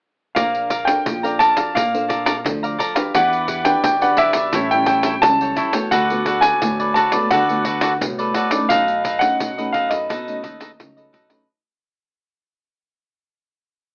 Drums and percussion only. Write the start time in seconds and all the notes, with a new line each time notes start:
0.36 pandeiro
0.55 pandeiro
0.70 pandeiro
0.87 pandeiro
1.06 pandeiro
1.24 pandeiro
1.40 pandeiro
1.57 pandeiro
1.77 pandeiro
1.95 pandeiro
2.10 pandeiro
2.26 pandeiro
2.46 pandeiro
2.64 pandeiro
2.80 pandeiro
2.96 pandeiro
3.15 pandeiro
3.33 pandeiro
3.48 pandeiro
3.65 pandeiro
3.84 pandeiro
4.02 pandeiro
4.17 pandeiro
4.33 pandeiro
4.53 pandeiro
4.71 pandeiro
4.86 pandeiro
5.03 pandeiro
5.23 pandeiro
5.41 pandeiro
5.57 pandeiro
5.73 pandeiro
5.92 pandeiro
6.10 pandeiro
6.26 pandeiro
6.42 pandeiro
6.62 pandeiro
6.80 pandeiro
6.96 pandeiro
7.12 pandeiro
7.31 pandeiro
7.49 pandeiro
7.65 pandeiro
7.81 pandeiro
8.01 pandeiro
8.19 pandeiro
8.34 pandeiro
8.51 pandeiro
8.70 pandeiro
8.88 pandeiro
9.05 pandeiro
9.21 pandeiro
9.40 pandeiro
9.58 pandeiro
9.74 pandeiro
9.91 pandeiro
10.10 pandeiro
10.28 pandeiro
10.44 pandeiro
10.61 pandeiro
10.80 pandeiro
10.97 pandeiro
11.14 pandeiro
11.30 pandeiro